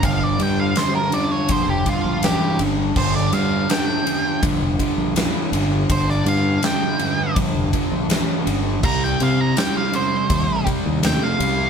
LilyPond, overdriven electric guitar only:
\new Staff \with { instrumentName = "Overdriven electric guitar" } { \clef bass \time 4/4 \key g \minor \tempo 4 = 82 <g, d>8 <g, d>8 <g, d>8 <g, d>8 <g, d>8 <g, d>8 <g, e>8 <g, d>8 | <g, d>8 <g, d>8 <g, d>8 <g, d>8 <g, d>8 <g, d>8 <g, e>8 <g, d>8 | <g, d>8 <g, d>8 <g, d>8 <g, d>8 <g, d>8 <g, d>8 <g, e>8 <g, d>8 | <c g>8 <c g>8 <c g>8 <c g>8 <c g>8 <c g>8 <c a>8 <c g>8 | }